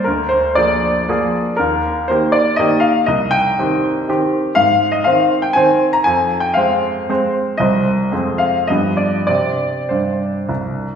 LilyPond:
<<
  \new Staff \with { instrumentName = "Grand piano" } { \time 3/4 \key c \minor \tempo 4 = 117 bes'8 c''8 d''2 | bes'4 c''8 d''8 ees''8 f''8 | ees''8 g''2~ g''8 | f''8. ees''16 f''8. g''16 aes''8. bes''16 |
aes''8. g''16 f''4. r8 | ees''4. f''8 ees''8 d''8 | d''4 c''4. r8 | }
  \new Staff \with { instrumentName = "Grand piano" } { \time 3/4 \key c \minor d,4 <f bes aes'>4 <f bes aes'>4 | ees,4 <ees bes g'>4 <ees bes g'>4 | c,4 <ees c' g'>4 <ees c' g'>4 | aes,4 <ees c' c''>4 <ees c' c''>4 |
f,4 <aes c' c''>4 <aes c' c''>4 | <c, g c' c''>4 <f, aes c' c''>4 <g, f b g'>4 | <c c' g'>4 g,4 c,4 | }
>>